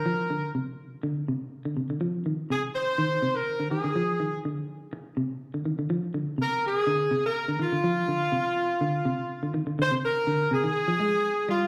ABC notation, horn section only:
X:1
M:4/4
L:1/16
Q:"Swing 16ths" 1/4=124
K:Cm
V:1 name="Horn section"
B4 z12 | z4 A2 c4- c B3 A2- | A4 z12 | z4 B2 A4- A B3 F2- |
F12- F2 z2 | c2 B4 A8 F2 |]